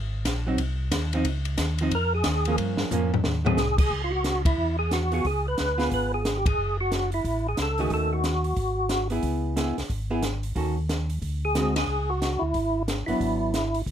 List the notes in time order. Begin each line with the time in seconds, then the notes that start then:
Already playing: G#1
0.25 A#1, kick, snare, hi-hat pedal, ride
0.47 F#3 C4 D#4
0.58 C2, kick, ride
0.91 D#2, kick, snare, hi-hat pedal, ride
1.13 F3 C4 D#4, ride
1.24 C#2, kick, ride
1.45 ride
1.58 D#2, kick, snare, hi-hat pedal, ride
1.78 F3 C4, ride
1.82 D#4
1.91 F2 A#4, kick, ride
2.15 G#4
2.24 D#2, kick, snare, hi-hat pedal, ride
2.45 F3 A#3 C#4, ride
2.58 G2, kick, ride
2.77 G2, snare
2.91 F2 F3 A#3 C#4, floor tom, hi-hat pedal
3.14 floor tom
3.24 D#2, snare
3.45 F#3 A3 C4 G#4, floor tom
3.57 C2, snare, hi-hat pedal
3.78 G#4, kick, crash
3.91 C#2, kick
4.04 F4
4.11 F#4
4.24 snare, closed hi-hat
4.45 E4, kick, ride
4.58 E2
4.79 G#4
4.91 F#4, snare, closed hi-hat
5.12 B3 F4 F#4 G#4, open hi-hat
5.25 C#2 G#4, kick, open hi-hat
5.48 B4
5.58 D2, snare, closed hi-hat
5.78 B3 F4 G#4, snare, open hi-hat
5.91 G#1 B4, kick, open hi-hat
6.14 G#4
6.25 snare, closed hi-hat
6.37 G4
6.46 G#4, kick, ride
6.58 F#1
6.81 F#4
6.92 snare, closed hi-hat
7.12 E4, open hi-hat
7.24 A1, kick, open hi-hat
7.48 G#4
7.57 C#2, snare, closed hi-hat
7.62 A4
7.78 D#3 A3 C#4 F#4 G#4, open hi-hat
7.90 D#2 A4, kick, open hi-hat
8.13 F#4
8.24 snare, closed hi-hat
8.44 open hi-hat
8.56 G#1, kick, open hi-hat
8.89 snare, closed hi-hat
9.10 B3 E4 G#4, open hi-hat
9.23 C#2, kick, open hi-hat
9.56 B3 E4 G#4, snare, closed hi-hat
9.77 C#2, snare, open hi-hat
9.90 G#1, kick, open hi-hat
10.10 B3 E4 G#4
10.23 snare, closed hi-hat
10.43 open hi-hat
10.55 D#2 D#3 C#4 F#4 A4, kick, open hi-hat
10.89 snare, closed hi-hat
11.10 open hi-hat
11.22 D2, kick, open hi-hat
11.45 G#4
11.55 D3 G#3 C4 F#4, snare, closed hi-hat
11.76 G#4, snare, ride
11.87 C#2
12.10 F#4
12.22 snare, closed hi-hat
12.39 D2 E4
12.54 G#1, kick, open hi-hat
12.88 snare, closed hi-hat
13.06 G#1 F#3 B3 D4 E4, open hi-hat
13.20 G#1, kick, open hi-hat
13.54 snare, closed hi-hat
13.74 open hi-hat
13.86 C#2, kick, open hi-hat